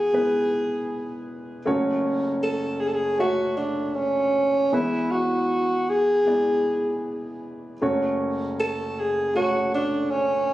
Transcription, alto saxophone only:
Already playing: G#4
2.43 A4
2.80 G#4
2.88 A4
2.94 G#4
3.20 F#4
3.57 D4
3.96 C#4
4.73 E4
5.11 F#4
5.89 G#4
8.60 A4
8.99 G#4
9.35 F#4
9.74 D4
10.11 C#4

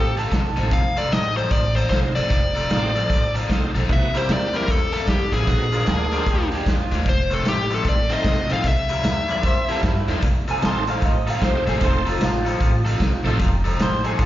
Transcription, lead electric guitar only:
Already playing: A4
0.73 F5
0.98 D5
1.12 D#5
1.37 C5
1.52 D5
1.76 C5
1.90 C5
2.15 D5
3.93 E5
4.17 C5
4.32 D5
4.56 A#4
4.71 A4
4.93 A4
5.09 G4
5.34 G#4
7.09 C5
7.34 A4
7.49 G4
7.74 A4
7.89 D5
8.13 D#5
8.53 F5
8.68 E5

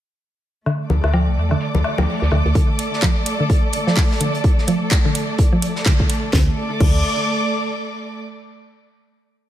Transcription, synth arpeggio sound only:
0.66 D3
1.14 F3
1.51 D3
1.98 F3
2.32 D3
2.55 D3
3.02 F3
3.40 D3
3.87 F3
4.21 D3
4.68 F3
5.05 D3
5.53 F3
5.86 D3
6.33 D3
6.80 D3

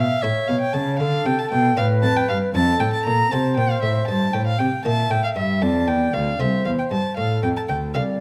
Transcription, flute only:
Already playing: E5
0.22 C#5
1.00 A4
1.77 B4
2.54 A4
3.31 C5
4.85 E5
5.62 D5
6.40 C5
7.18 A4
7.95 D5

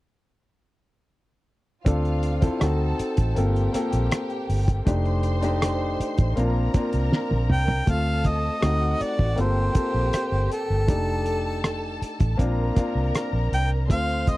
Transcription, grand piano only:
1.85 C4 D4 F4 A4
2.41 C4 E4 F4 A4
2.60 C4 D#4 F#4 A4
3.35 A#3 C4 F4 A4
3.73 A#3 C4 F4 A4
4.85 A3 D4 D#4 G4
5.41 A3 D4 D#4 G4
6.36 A#3 C4 D4 F4
6.73 A#3 C4 D4 F4
7.86 A3 C4 F4
8.61 A3 C4 D#4 F#4
9.35 A#3 C4 F4 A4
9.74 A#3 C4 F4 A4
10.87 A3 D4 D#4 G4
12.37 A#3 C4 D4 F4
12.75 A#3 C4 D4 F4
13.88 A3 C4 F4

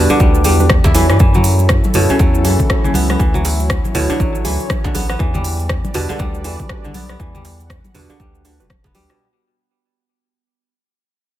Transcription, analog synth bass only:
0.20 D2
0.45 E2
0.85 E2
1.10 G2
1.20 F#2
1.95 F#2
2.20 E2
2.44 F#2
2.95 C#2
3.20 D2
3.94 D2
4.20 A1
4.45 D2
4.95 A1
5.20 E2
5.94 E2
6.20 D2
6.44 E2
6.95 B1
7.20 E2
7.95 E2
8.20 D2
8.60 E1
8.95 D2

